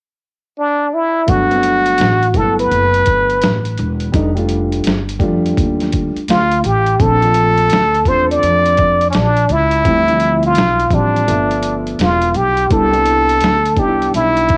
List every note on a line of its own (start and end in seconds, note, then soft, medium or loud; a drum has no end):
0.59 0.96 D4 medium
0.94 1.31 E4 medium
1.26 1.96 G1 medium
1.26 1.42 F#3 medium
1.26 1.42 A3 medium
1.26 1.43 B3 medium
1.26 1.43 D4 medium
1.26 2.39 F#4 medium
1.26 kick loud
1.26 closed hi-hat loud
1.49 2.04 F#3 medium
1.49 2.04 A3 medium
1.49 2.05 B3 medium
1.49 1.56 C4 medium
1.49 closed hi-hat medium
1.58 2.08 D4 medium
1.63 closed hi-hat medium
1.86 closed hi-hat soft
1.98 2.33 A1 medium
1.98 snare medium
1.98 closed hi-hat medium
2.22 closed hi-hat soft
2.34 2.68 G1 medium
2.34 3.31 F#3 medium
2.34 3.31 A3 medium
2.34 2.43 A#3 medium
2.34 3.32 E4 medium
2.34 2.59 A4 medium
2.34 kick medium
2.34 closed hi-hat medium
2.41 3.34 B3 medium
2.59 3.62 B4 loud
2.59 closed hi-hat soft
2.71 3.05 F#1 medium
2.71 closed hi-hat medium
2.94 closed hi-hat medium
3.06 3.41 G1 medium
3.06 kick medium
3.06 closed hi-hat medium
3.30 closed hi-hat medium
3.42 3.76 A1 medium
3.42 snare loud
3.42 closed hi-hat medium
3.65 closed hi-hat soft
3.78 4.13 E1 loud
3.78 closed hi-hat medium
4.00 closed hi-hat soft
4.12 4.82 F1 loud
4.12 4.28 G3 medium
4.12 4.28 A3 medium
4.12 4.28 D4 medium
4.12 4.29 D#4 loud
4.12 kick loud
4.12 closed hi-hat loud
4.35 4.90 G3 medium
4.35 4.90 A3 medium
4.35 4.90 D4 medium
4.35 4.91 F4 medium
4.35 closed hi-hat soft
4.49 closed hi-hat medium
4.72 closed hi-hat soft
4.84 5.21 G1 medium
4.84 snare loud
4.84 closed hi-hat medium
5.09 closed hi-hat medium
5.19 5.54 F2 medium
5.19 6.16 G3 medium
5.19 6.17 A3 medium
5.19 6.17 D4 medium
5.19 6.18 F4 medium
5.19 kick medium
5.19 closed hi-hat medium
5.46 closed hi-hat soft
5.57 6.12 D#2 medium
5.57 kick medium
5.57 closed hi-hat medium
5.80 snare soft
5.80 closed hi-hat soft
5.92 kick medium
5.92 closed hi-hat medium
6.15 muted upright bass stroke soft
6.15 closed hi-hat soft
6.28 6.62 D2 medium
6.28 6.68 F4 loud
6.28 snare loud
6.28 closed hi-hat medium
6.51 closed hi-hat medium
6.64 6.98 A1 medium
6.64 7.03 G4 medium
6.64 closed hi-hat medium
6.86 closed hi-hat medium
6.99 7.68 A#1 loud
6.99 7.14 F3 medium
6.99 7.15 A3 medium
6.99 7.15 C4 medium
6.99 7.15 D4 medium
6.99 8.10 A4 loud
6.99 kick loud
6.99 closed hi-hat loud
7.21 7.76 F3 medium
7.21 7.76 A3 medium
7.21 7.76 C4 medium
7.21 7.77 F4 medium
7.21 closed hi-hat medium
7.34 closed hi-hat medium
7.58 closed hi-hat medium
7.70 8.05 D2 medium
7.70 snare loud
7.70 closed hi-hat medium
7.95 closed hi-hat medium
8.05 8.40 E2 medium
8.05 9.03 A3 medium
8.05 9.03 C4 medium
8.05 9.03 D4 medium
8.05 9.02 F4 medium
8.05 8.30 C5 medium
8.05 kick medium
8.05 closed hi-hat medium
8.31 9.06 D5 medium
8.31 closed hi-hat medium
8.43 9.11 F2 medium
8.43 closed hi-hat medium
8.65 closed hi-hat soft
8.77 kick medium
8.77 closed hi-hat medium
9.01 closed hi-hat soft
9.11 9.48 A#1 medium
9.11 9.17 C#4 medium
9.11 closed hi-hat medium
9.15 9.54 D4 medium
9.15 snare loud
9.37 closed hi-hat soft
9.49 9.84 C#2 loud
9.49 10.45 E4 loud
9.49 closed hi-hat medium
9.71 closed hi-hat medium
9.84 10.53 D2 loud
9.84 9.99 F3 medium
9.84 10.00 G3 medium
9.84 10.00 C4 medium
9.84 10.01 E4 medium
9.84 kick loud
9.84 closed hi-hat loud
10.07 10.12 E3 medium
10.07 10.62 G3 medium
10.07 10.62 C4 medium
10.07 10.62 E4 medium
10.07 closed hi-hat medium
10.14 10.65 F3 medium
10.20 closed hi-hat medium
10.43 10.96 F4 medium
10.43 closed hi-hat soft
10.55 10.90 B1 medium
10.55 snare loud
10.55 closed hi-hat medium
10.80 closed hi-hat medium
10.91 11.25 A1 medium
10.91 11.25 F3 medium
10.91 11.28 G3 medium
10.91 11.28 C4 medium
10.91 11.76 D4 medium
10.91 11.29 G4 medium
10.91 kick medium
10.91 closed hi-hat medium
11.16 closed hi-hat medium
11.27 11.96 G1 medium
11.27 12.44 F3 medium
11.27 12.44 A3 medium
11.27 12.44 B3 medium
11.27 12.45 E5 medium
11.27 closed hi-hat medium
11.51 closed hi-hat soft
11.63 closed hi-hat medium
11.87 closed hi-hat soft
11.99 12.33 E1 medium
11.99 12.38 F4 medium
11.99 snare medium
11.99 closed hi-hat medium
12.22 closed hi-hat soft
12.34 12.69 B1 medium
12.34 12.72 G4 medium
12.34 closed hi-hat medium
12.57 closed hi-hat medium
12.70 13.39 C2 loud
12.70 12.85 G3 medium
12.70 12.85 B3 medium
12.70 12.86 D4 medium
12.70 12.86 E4 medium
12.70 13.81 A4 loud
12.70 kick loud
12.70 closed hi-hat loud
12.91 13.46 G3 medium
12.91 13.47 B3 medium
12.91 13.47 D4 medium
12.91 13.48 E4 medium
12.91 closed hi-hat medium
13.06 closed hi-hat medium
13.29 closed hi-hat soft
13.41 13.76 D2 medium
13.41 snare loud
13.41 closed hi-hat medium
13.65 closed hi-hat soft
13.76 14.11 C2 medium
13.76 14.57 G3 medium
13.76 14.57 B3 medium
13.76 14.57 D4 medium
13.76 13.87 D#4 medium
13.76 14.15 G4 medium
13.76 kick medium
13.76 closed hi-hat medium
13.86 14.57 E4 medium
14.02 closed hi-hat medium
14.14 14.57 B1 medium
14.14 14.57 E4 loud
14.14 closed hi-hat medium
14.37 closed hi-hat soft
14.49 kick medium
14.49 closed hi-hat medium